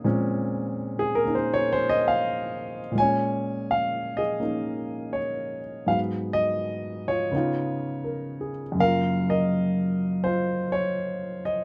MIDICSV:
0, 0, Header, 1, 2, 480
1, 0, Start_track
1, 0, Key_signature, -5, "minor"
1, 0, Tempo, 728155
1, 32, Time_signature, 4, 2, 24, 8
1, 7674, End_track
2, 0, Start_track
2, 0, Title_t, "Grand piano"
2, 0, Program_c, 0, 0
2, 0, Control_c, 0, 64, 127
2, 0, Note_on_c, 0, 58, 43
2, 0, Note_on_c, 0, 61, 39
2, 0, Note_on_c, 0, 63, 48
2, 0, Note_on_c, 0, 68, 78
2, 28, Note_on_c, 0, 46, 64
2, 30, Note_on_c, 0, 56, 57
2, 35, Note_on_c, 0, 60, 57
2, 39, Note_off_c, 0, 61, 0
2, 39, Note_on_c, 0, 61, 62
2, 654, Note_off_c, 0, 68, 0
2, 654, Note_on_c, 0, 68, 81
2, 759, Note_on_c, 0, 70, 87
2, 816, Note_off_c, 0, 68, 0
2, 823, Note_off_c, 0, 61, 0
2, 825, Note_off_c, 0, 58, 0
2, 825, Note_on_c, 0, 58, 43
2, 833, Note_on_c, 0, 61, 38
2, 842, Note_off_c, 0, 63, 0
2, 842, Note_on_c, 0, 63, 49
2, 872, Note_off_c, 0, 70, 0
2, 889, Note_on_c, 0, 72, 75
2, 977, Note_off_c, 0, 72, 0
2, 1013, Note_on_c, 0, 73, 93
2, 1137, Note_on_c, 0, 72, 90
2, 1156, Note_off_c, 0, 73, 0
2, 1249, Note_on_c, 0, 75, 97
2, 1298, Note_off_c, 0, 72, 0
2, 1356, Note_off_c, 0, 75, 0
2, 1369, Note_on_c, 0, 77, 91
2, 1833, Note_off_c, 0, 77, 0
2, 1912, Note_off_c, 0, 46, 0
2, 1922, Note_on_c, 0, 46, 53
2, 1936, Note_off_c, 0, 56, 0
2, 1946, Note_on_c, 0, 56, 46
2, 1948, Note_off_c, 0, 58, 0
2, 1952, Note_off_c, 0, 60, 0
2, 1952, Note_off_c, 0, 61, 0
2, 1957, Note_off_c, 0, 63, 0
2, 1958, Control_c, 0, 64, 0
2, 1963, Note_on_c, 0, 80, 99
2, 1977, Note_on_c, 0, 73, 69
2, 1993, Note_on_c, 0, 61, 58
2, 2058, Control_c, 0, 64, 127
2, 2444, Note_on_c, 0, 77, 91
2, 2451, Note_off_c, 0, 80, 0
2, 2748, Note_on_c, 0, 75, 84
2, 2759, Note_on_c, 0, 68, 61
2, 2765, Note_off_c, 0, 77, 0
2, 2897, Note_off_c, 0, 61, 0
2, 2897, Note_off_c, 0, 73, 0
2, 2899, Note_on_c, 0, 58, 42
2, 2907, Note_on_c, 0, 61, 41
2, 2919, Note_on_c, 0, 63, 47
2, 3381, Note_on_c, 0, 73, 73
2, 3409, Note_off_c, 0, 75, 0
2, 3687, Note_off_c, 0, 68, 0
2, 3855, Note_off_c, 0, 46, 0
2, 3864, Note_off_c, 0, 58, 0
2, 3866, Note_on_c, 0, 44, 48
2, 3868, Note_off_c, 0, 56, 0
2, 3868, Note_off_c, 0, 61, 0
2, 3871, Note_on_c, 0, 54, 44
2, 3874, Note_off_c, 0, 63, 0
2, 3875, Note_on_c, 0, 77, 80
2, 3877, Control_c, 0, 64, 0
2, 3878, Note_on_c, 0, 56, 44
2, 3878, Note_on_c, 0, 59, 49
2, 3880, Note_off_c, 0, 73, 0
2, 3881, Note_on_c, 0, 71, 60
2, 3946, Note_off_c, 0, 77, 0
2, 4012, Control_c, 0, 64, 127
2, 4175, Note_on_c, 0, 75, 95
2, 4667, Note_on_c, 0, 73, 88
2, 4671, Note_on_c, 0, 65, 50
2, 4676, Note_off_c, 0, 75, 0
2, 4809, Note_off_c, 0, 71, 0
2, 4819, Note_off_c, 0, 59, 0
2, 4822, Note_on_c, 0, 49, 58
2, 4828, Note_off_c, 0, 44, 0
2, 4829, Note_on_c, 0, 59, 52
2, 4830, Note_off_c, 0, 54, 0
2, 4834, Note_off_c, 0, 56, 0
2, 4839, Control_c, 0, 64, 0
2, 4843, Note_on_c, 0, 63, 56
2, 4845, Note_off_c, 0, 65, 0
2, 4855, Note_on_c, 0, 65, 68
2, 4946, Control_c, 0, 64, 127
2, 5302, Note_on_c, 0, 70, 47
2, 5542, Note_on_c, 0, 68, 46
2, 5601, Note_off_c, 0, 73, 0
2, 5678, Note_off_c, 0, 70, 0
2, 5749, Note_on_c, 0, 42, 52
2, 5764, Note_off_c, 0, 49, 0
2, 5774, Note_on_c, 0, 49, 43
2, 5789, Note_off_c, 0, 59, 0
2, 5796, Note_off_c, 0, 63, 0
2, 5799, Control_c, 0, 64, 0
2, 5799, Note_on_c, 0, 58, 47
2, 5802, Note_off_c, 0, 65, 0
2, 5803, Note_on_c, 0, 70, 72
2, 5804, Note_on_c, 0, 77, 97
2, 5822, Note_on_c, 0, 65, 53
2, 5880, Note_off_c, 0, 68, 0
2, 5920, Control_c, 0, 64, 127
2, 6116, Note_off_c, 0, 70, 0
2, 6124, Note_off_c, 0, 77, 0
2, 6126, Note_on_c, 0, 70, 66
2, 6130, Note_on_c, 0, 75, 86
2, 6745, Note_off_c, 0, 65, 0
2, 6748, Note_on_c, 0, 72, 83
2, 6754, Note_on_c, 0, 65, 56
2, 6779, Note_off_c, 0, 75, 0
2, 7044, Note_off_c, 0, 72, 0
2, 7050, Note_off_c, 0, 70, 0
2, 7068, Note_on_c, 0, 73, 84
2, 7521, Note_off_c, 0, 73, 0
2, 7550, Note_on_c, 0, 75, 77
2, 7674, Note_off_c, 0, 42, 0
2, 7674, Note_off_c, 0, 49, 0
2, 7674, Note_off_c, 0, 58, 0
2, 7674, Note_off_c, 0, 65, 0
2, 7674, Note_off_c, 0, 75, 0
2, 7674, End_track
0, 0, End_of_file